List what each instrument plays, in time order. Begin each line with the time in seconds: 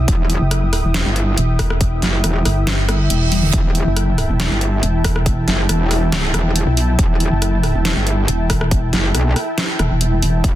Already playing: supersaw synth E4 E5 G5 D#6
0.08 wobble bass E1, kick, closed hi-hat
0.30 closed hi-hat
0.41 wobble bass F#1
0.51 cross-stick, closed hi-hat
0.73 cross-stick, open hi-hat
0.84 wobble bass E1
0.94 snare, closed hi-hat
1.06 wobble bass G1
1.16 closed hi-hat
1.37 wobble bass E1, closed hi-hat
1.59 kick, cross-stick, open hi-hat
1.70 cross-stick
1.81 kick, closed hi-hat
2.02 wobble bass F#1, snare, closed hi-hat
2.24 wobble bass E1, cross-stick, closed hi-hat
2.45 wobble bass G1, cross-stick, open hi-hat
2.67 snare, closed hi-hat, reverse cymbal
2.89 cross-stick, closed hi-hat
3.10 wobble bass E1, closed hi-hat
3.32 open hi-hat, high tom
3.43 mid tom
3.53 wobble bass E1, supersaw synth A5, kick, closed hi-hat
3.75 closed hi-hat
3.86 wobble bass F#1
3.97 cross-stick, closed hi-hat
4.18 cross-stick, open hi-hat
4.29 wobble bass E1
4.40 snare, closed hi-hat
4.51 wobble bass G1
4.61 closed hi-hat
4.83 wobble bass E1, closed hi-hat
5.04 kick, cross-stick, open hi-hat
5.16 cross-stick
5.26 kick, closed hi-hat
5.48 wobble bass F#1, snare, closed hi-hat
5.69 wobble bass E1, cross-stick, closed hi-hat
5.91 cross-stick, open hi-hat
6.12 snare, closed hi-hat
6.34 wobble bass E1, cross-stick, closed hi-hat
6.56 closed hi-hat
6.67 wobble bass B1
6.77 open hi-hat
6.99 wobble bass E1, kick, closed hi-hat
7.20 closed hi-hat
7.32 wobble bass F#1
7.42 cross-stick, closed hi-hat
7.63 cross-stick, open hi-hat
7.75 wobble bass E1
7.85 snare, closed hi-hat
7.96 wobble bass G1
8.07 closed hi-hat
8.28 wobble bass E1, closed hi-hat
8.50 kick, cross-stick, open hi-hat
8.61 cross-stick
8.71 kick, closed hi-hat
8.93 wobble bass F#1, snare, closed hi-hat
9.15 wobble bass B1, cross-stick, closed hi-hat
9.36 cross-stick, open hi-hat
9.58 snare, closed hi-hat
9.79 wobble bass E1, cross-stick, closed hi-hat
9.91 wobble bass E1
10.01 closed hi-hat
10.22 wobble bass E1, open hi-hat
10.44 wobble bass E1, supersaw synth B5, kick, closed hi-hat